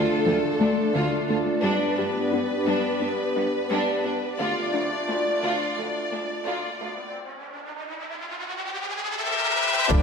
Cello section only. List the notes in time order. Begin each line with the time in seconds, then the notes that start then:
0.25 D2
0.60 D2
0.94 D2
1.29 D2
1.63 G2
1.98 G2
2.32 G2
2.67 G2
3.01 G2
3.36 G2
3.70 G2
4.05 G2
4.39 D2
4.74 D2
5.09 D2
5.43 D2
5.77 D2
6.11 D2
6.46 D2
6.80 D2
9.90 D2